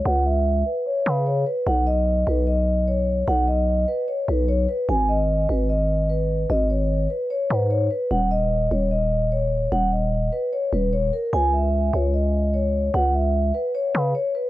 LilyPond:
<<
  \new Staff \with { instrumentName = "Vibraphone" } { \time 4/4 \key cis \dorian \tempo 4 = 149 fis''8 e''4 b'8 cis''8 b'8 cis''8 b'8 | fis''8 dis''4 b'8 dis''4 cis''4 | fis''8 dis''4 b'8 cis''8 b'8 cis''8 b'8 | gis''8 dis''4 b'8 dis''4 b'4 |
dis''8 cis''4 b'8 cis''8 b'8 cis''8 b'8 | fis''8 dis''4 cis''8 dis''4 cis''4 | fis''8 dis''4 b'8 cis''8 b'8 cis''8 ais'8 | gis''8 e''4 cis''8 dis''4 cis''4 |
fis''8 e''4 b'8 cis''8 b'8 cis''8 b'8 | }
  \new Staff \with { instrumentName = "808-style bass" } { \clef bass \time 4/4 \key cis \dorian cis,4. r4 cis4 r8 | b,,4. b,,2~ b,,8 | b,,4. r4 b,,4 r8 | gis,,4. gis,,2~ gis,,8 |
gis,,4. r4 gis,4 r8 | dis,,4. dis,,2~ dis,,8 | dis,,4. r4 dis,,4 r8 | cis,4. cis,2~ cis,8 |
cis,4. r4 cis8 r4 | }
>>